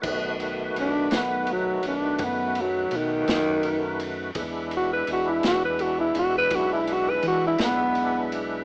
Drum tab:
CC |x-----------|------------|
RD |-xxxxxxxxxxx|xxxxxxxxxxxx|
SD |---o-----o--|---o-----o--|
BD |o-----o-----|o-----o-----|